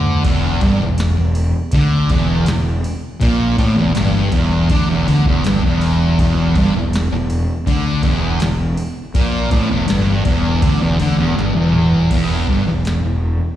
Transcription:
Already playing: D2 D3
0.06 floor tom
0.24 E1 E2, kick, crash
0.61 G1 G2, kick, crash
0.82 E1 E2
0.98 snare, crash
1.18 E1 E2
1.35 crash
1.72 D2 D3, kick, crash
2.09 E1 E2, kick, snare, crash
2.46 E1 E2, snare, crash
2.84 crash
3.21 A#1 A#2, kick, crash
3.58 A1 A2, kick, crash
3.76 E1 E2, snare
3.94 G1 G2, snare, crash
4.32 E1 E2, kick, crash
4.69 D2 D3, kick, crash
4.89 E1 E2
5.08 D2 D3, crash
5.26 E1 E2, kick
5.44 G1 G2, snare, crash
5.63 E1 E2, kick
5.81 crash
6.18 E1 E2, kick, crash
6.55 G1 G2, kick, crash
6.75 E1 E2
6.93 snare, crash
7.12 E1 E2
7.30 crash
7.67 D2 D3, kick, crash
8.03 E1 E2, kick, crash
8.40 E1 E2, snare, crash
8.77 crash
9.15 A#1 A#2, kick, crash
9.51 A1 A2, kick, crash
9.70 E1 E2
9.87 G1 G2, snare, crash
10.24 E1 E2, kick, crash
10.62 D2 D3, kick, crash
10.80 E1 E2
10.98 D2 D3, crash
11.18 E1 E2
11.36 G1 G2, snare
11.55 E1 E2
11.73 mid tom
11.92 floor tom
12.11 E1 E2, kick, open hi-hat, crash
12.47 G1 G2, kick
12.67 E1 E2
12.85 snare, open hi-hat
13.05 E1 E2

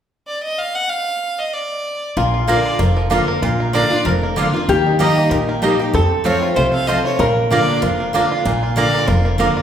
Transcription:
0.27 D5
0.43 D#5
0.58 F5
0.75 F#5
0.89 F5
1.39 D#5
1.53 D5
2.17 A#1 A#2 A#3 F4
2.34 F4
2.47 D3 A#3 D4 F4 A#4 D5 A#5
2.65 F4
2.79 F1 F2 A#3 A#4
2.97 F3
3.10 D3 A#3 D4 F4 D5 A#5
3.28 A#4
3.42 A#1 A#2 F4
3.60 A#3
3.73 D3 A#3 D4 F4 D5 A#5
3.90 D4 F4
4.05 F1 F2 A#4
4.23 A#3
4.36 D3 A#3 D4 F4 D5 A#5
4.53 A#3 D4 F4
4.68 D#2 D#3 A#3 G4
4.86 D#4
4.99 G3 A#3 D#4 G4 D#5 A#5
5.18 D#4
5.31 A#1 A#2 G4 A#4
5.49 A#3
5.62 G3 A#3 D#4 G4 D#5 A#5
5.79 D#4 G4
5.93 F2 C4 A4
6.24 F3 A3 C4 F4 C5 C#5 A5
6.42 F4
6.55 C2 C3 F4 C5
6.73 C4 F5
6.87 F3 A3 C4 F4 C5 D#5 A5
7.04 F4 C#5
7.19 A#1 A#2 A#3 A#4
7.50 D3 A#3 D4 F4 D5 A#5
7.68 D4
7.82 F1 F2 F4 A#4
8.00 A#3
8.13 D3 A#3 D4 F4 D5 A#5
8.32 F4
8.45 A#1 A#2 A#3
8.63 F4
8.76 D3 A#3 D4 F4 D5 A#5
8.94 A#4
9.08 F1 F2 F4 A#4
9.25 A#3
9.38 D3 A#3 D4 F4 A#4 D5 A#5
9.57 F4

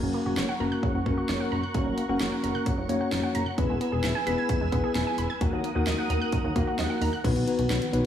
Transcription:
Already playing: A#3 C#4 F#4 A#4 F#5 C#6
0.03 F#1 F#3
0.14 A#3
0.26 F#1 F#4
0.37 F#1 C#5, snare
0.49 F#5
0.60 F#1 A#3 C#4 F#4 A#4 A#5
0.72 F#6
0.83 C#3, kick
0.95 F#1 F#3
1.06 F#1 A#3 C#4 F#4 A#4, kick
1.18 F#4
1.29 F#1 C#5, snare
1.40 F#5
1.52 F#1 A#5
1.63 F#6
1.75 F#1 C#3 A#3 C#4 F#4 A#4, kick, closed hi-hat
1.86 F#1 F#3
1.98 A#3, closed hi-hat
2.09 F#1 A#3 C#4 F#4 A#4
2.20 F#1 C#5, snare, closed hi-hat
2.32 F#5
2.44 F#1 A#5, closed hi-hat
2.55 F#6
2.66 C#3, kick, closed hi-hat
2.78 F#1 F#3
2.89 F#1 A#3 C#4 F#4 C#5, closed hi-hat
3.01 F#4
3.12 F#1 C#5, snare, closed hi-hat
3.23 F#5
3.35 F#1 A#5, closed hi-hat
3.46 F#6
3.58 E1 E3 B3 E4 G#4 B4 G#5 E6, kick, closed hi-hat
3.69 E1 G#3
3.81 B3, closed hi-hat
3.92 E1 G#4
4.04 E1 E5, snare, closed hi-hat
4.15 G#5
4.27 E1 B3 E4 G#4 B4 B5, closed hi-hat
4.38 G#6
4.49 E3, kick, closed hi-hat
4.61 E1 G#3
4.72 E1 B3 E4 G#4 B4, kick, closed hi-hat
4.84 G#4
4.95 E1 E5, snare, closed hi-hat
5.07 G#5
5.18 E1 B5, closed hi-hat
5.30 G#6
5.41 D#2 D#3 A#3 D#4 F#4 A#4 F#5 D#6, kick, closed hi-hat
5.53 D#2 F#3
5.64 A#3, closed hi-hat
5.75 D#2 A#3 D#4 F#4 A#4
5.87 D#2 D#5, snare, closed hi-hat
5.98 F#5
6.10 D#2 A#5, closed hi-hat
6.21 F#6
6.32 D#3, kick, closed hi-hat
6.44 D#2 F#3
6.56 D#2 A#3 D#4 F#4 A#4, kick, closed hi-hat
6.67 F#4
6.79 D#2 D#5, snare, closed hi-hat
6.90 F#5
7.01 D#2 A#5, open hi-hat
7.13 F#6
7.24 B1 D#3 B3 D#4 F#4 B4, kick, closed hi-hat, crash
7.36 B1, closed hi-hat
7.47 B3 D#4 F#4 B4, closed hi-hat
7.59 B1, closed hi-hat
7.70 B1, snare, closed hi-hat
7.82 closed hi-hat
7.93 B1 B3 D#4 F#4 B4, closed hi-hat

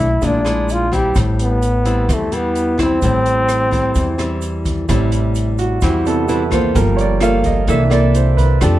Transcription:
Already playing: B1 B2 E4
0.22 A#1 A#2 G#3 D4 E4, kick, closed hi-hat, shaker
0.45 G#3 D4 E4, cross-stick, closed hi-hat, shaker
0.69 F4, closed hi-hat, shaker
0.92 G3 C4 E4 G4, kick, closed hi-hat, shaker
1.15 A1 A2, kick, cross-stick, closed hi-hat, shaker
1.39 B3, closed hi-hat, shaker
1.62 closed hi-hat, shaker
1.85 G3 C4 E4, closed hi-hat, shaker
2.09 E2 E3, kick, cross-stick, closed hi-hat, shaker
2.14 A3
2.32 G3 B3 E4, closed hi-hat, shaker
2.55 closed hi-hat, shaker
2.78 G3 C4 E4, kick, cross-stick, closed hi-hat, shaker
2.83 C4
3.02 A1 A2 G3 C4 E4, kick, closed hi-hat, shaker
3.26 closed hi-hat, shaker
3.49 cross-stick, closed hi-hat, shaker
3.71 G3 C4 E4, kick, closed hi-hat, shaker
3.95 E2 E3, kick, closed hi-hat, shaker
4.18 G3 C4 E4, cross-stick, closed hi-hat, shaker
4.41 closed hi-hat, shaker
4.65 kick, closed hi-hat, shaker
4.89 A1 A2 C3 G3 C4 E4, kick, cross-stick, closed hi-hat, shaker
5.12 closed hi-hat, shaker
5.35 closed hi-hat, shaker
5.58 F#4, closed hi-hat, shaker
5.81 E2 E3 G3 C4 E4 G4, kick, cross-stick, closed hi-hat, shaker
6.05 C3 G3 B3 A4, closed hi-hat, shaker
6.28 G3 C4 E4 B4, closed hi-hat, shaker
6.51 A#3 F4 A4 C5, kick, cross-stick, closed hi-hat, shaker
6.75 G1 F3 G3 A#3 A#4, kick, closed hi-hat, shaker
6.97 C#5, closed hi-hat, shaker
7.01 D5
7.20 A#3 F4 A4 F5, cross-stick, closed hi-hat, shaker
7.44 D#5, kick, closed hi-hat, shaker
7.67 C2 C3 E3 A#3 D4 E4 A4 E5, kick, closed hi-hat, shaker
7.90 A#3 E4 A4 D5, cross-stick, closed hi-hat, shaker
8.14 C5, closed hi-hat, shaker
8.37 B4, kick, closed hi-hat, shaker
8.61 F2 F3 A3 D4 G4 A4, kick, cross-stick, closed hi-hat, shaker

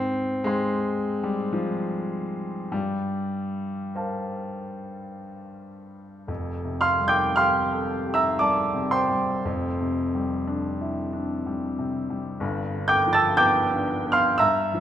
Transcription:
Already playing: G#2 C4
0.44 G#3 G#4 C5 G5 C6
1.23 G3
1.53 F3
2.72 G2 G3
3.95 A#4 C5 F5 A5
6.27 F1 F2
6.65 C3
6.81 F5 C6 F6
7.01 G3
7.08 G5 D6 G6
7.36 G4 F5 C6 F6
7.72 A4
8.07 G4
8.14 E5 A#5 E6
8.39 G3 D5 A5 D6
8.74 C3
8.91 C5 G5 C6
9.11 G3
9.45 F1 F2
9.81 C3
10.15 G3
10.48 D4
10.81 E4
11.13 D4
11.46 G3
11.79 C3
12.10 G3
12.40 G1 G2
12.74 D3
12.88 G5 D6 G6
13.07 F3
13.13 A5 E6 A6
13.37 B3 G5 D6 G6
13.71 D4
14.05 B3
14.12 F5 C6 F6
14.38 G2 E5 A#5 E6
14.74 F3

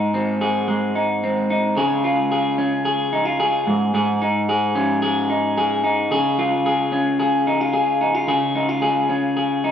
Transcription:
Already playing: G#2 G#3 D#4 G#4
0.14 C4
0.41 G#4
0.68 G#3
0.95 D#4
1.23 C4
1.50 D#4
1.77 C#3 G#4
2.04 F4
2.32 G#4
2.58 C#4
2.85 G#4
3.13 D#4
3.25 F4
3.40 G#4
3.67 G#2
3.94 G#2 G#4
4.22 D#4
4.49 G#4
4.75 C#4
5.02 G#4
5.30 D#4
5.57 G#4
5.84 D#4
6.11 C#3 G#4
6.38 F4
6.66 G#4
6.92 C#4
7.20 G#4
7.47 D#4
7.61 F4
7.73 G#4
8.01 D#4
8.15 F4
8.28 C#3 G#4
8.55 D#4
8.69 F4
8.82 G#4
9.09 C#4
9.37 G#4
9.64 D#4

